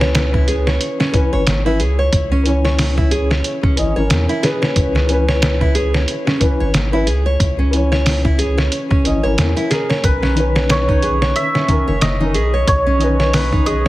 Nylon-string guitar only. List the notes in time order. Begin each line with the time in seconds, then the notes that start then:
0.01 C#5
0.34 E4
0.48 G#4
0.67 C#5
1.00 C#4
1.33 C#5
1.66 E4
1.80 G#4
1.99 C#5
2.32 C#4
2.65 C#5
2.98 E4
3.11 G#4
3.31 C#5
3.63 C#4
3.96 C#5
4.29 E4
4.43 G#4
4.62 C#5
4.95 C#4
5.28 C#5
5.61 E4
5.75 G#4
5.94 C#5
6.27 C#4
6.60 C#5
6.93 E4
7.07 G#4
7.26 C#5
7.59 C#4
7.92 C#5
8.25 E4
8.38 G#4
8.58 C#5
8.90 C#4
9.23 C#5
9.56 E4
9.70 G#4
9.89 C#5
10.22 C#4
10.55 C#5
10.89 D#4
11.03 G#4
11.22 C#5
11.55 C#4
11.88 C#5
12.20 D#4
12.34 G#4
12.54 C#5
12.87 C#4
13.20 C#5
13.53 D#4
13.67 G#4